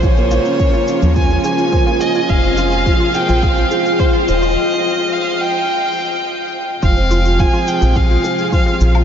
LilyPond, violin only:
\new Staff \with { instrumentName = "Violin" } { \time 4/4 \key f \minor \tempo 4 = 106 des''2 aes''8 aes''4 ees''8 | f''4. g''8 f''4 c''8 ees''8~ | ees''4 f''8 g''2 r8 | f''4 aes''8 g''8 f''4 f''8. r16 | }